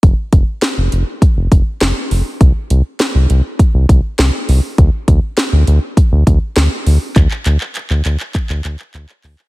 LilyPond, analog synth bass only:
\new Staff \with { instrumentName = "Analog synth bass" } { \clef bass \time 4/4 \key d \minor \tempo 4 = 101 f,,16 r16 f,,16 r8 f,,16 f,,16 r8 f,,16 f,,16 r16 f,,16 r16 f,,16 r16 | c,16 r16 c,16 r8 c,16 c,16 r8 c,16 c,16 r16 c,16 r16 c,16 r16 | d,16 r16 d,16 r8 d,16 d,16 r8 d,16 d,16 r16 d,16 r16 d,16 r16 | d,16 r16 d,16 r8 d,16 d,16 r8 d,16 d,16 r16 d,16 r16 d,16 r16 | }